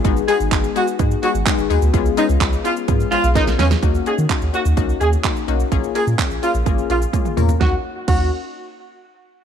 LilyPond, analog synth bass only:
\new Staff \with { instrumentName = "Analog synth bass" } { \clef bass \time 4/4 \key ees \minor \tempo 4 = 127 aes,,8 r16 aes,,16 aes,,8 r8 aes,8 r16 aes,,16 r16 aes,,16 ees,16 d,16 | des,8 r16 des,16 des,8 r8 aes,8 ces,16 ces,8 ces,16 fes,8 | ees,8 r16 ees16 r16 ees,16 r16 ees,16 des,8 ees,8 r8 ces,8 | bes,,8 r16 bes,16 r16 bes,,16 r16 bes,,16 aes,,8 bes,,8 r8 fes,8 |
ees,16 r8. ees,8 r2 r8 | }